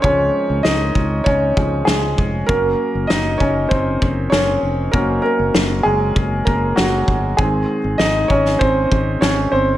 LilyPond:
<<
  \new Staff \with { instrumentName = "Grand piano" } { \time 4/4 \key ges \lydian \tempo 4 = 98 des''4 <ees' ees''>4 <des' des''>4 <aes aes'>4 | bes'4 <ees' ees''>8 <des' des''>8 <c' c''>4 <des' des''>4 | bes'8 <bes bes'>4 <aes aes'>4 <bes bes'>8 <ges ges'>4 | aes'4 <ees' ees''>8 <des' des''>8 <c' c''>4 <des' des''>8 <c' c''>8 | }
  \new Staff \with { instrumentName = "Grand piano" } { \clef bass \time 4/4 \key ges \lydian <f aes des'>2~ <f aes des'>8 <f aes des'>8 r4 | <ges bes des'>1 | <ges bes des'>4. r2 r8 | <ees aes c'>8 r2. r8 | }
  \new Staff \with { instrumentName = "Fingered electric bass" } { \clef bass \time 4/4 \key ges \lydian des,8 r16 des,16 des,8 des,8 des,8 des,8 des,8 f,,8 | ges,,8 r16 ges,,16 ges,,8 ges,,8 ges,,8 ges,,8 ges,,8 f,,8 | ges,,8 r16 ges,,16 ges,,8 ges,,8 ges,,8 ges,,8 ges,,8 g,,8 | aes,,8 r16 aes,,16 aes,,8 aes,,8 aes,,8 aes,,8 aes,,8 g,,8 | }
  \new DrumStaff \with { instrumentName = "Drums" } \drummode { \time 4/4 bd4 sn8 bd8 bd8 bd8 sn8 bd8 | bd4 sn8 bd8 bd8 bd8 sn4 | bd4 sn4 bd8 bd8 sn8 bd8 | bd4 sn8 bd16 sn16 bd8 bd8 sn4 | }
>>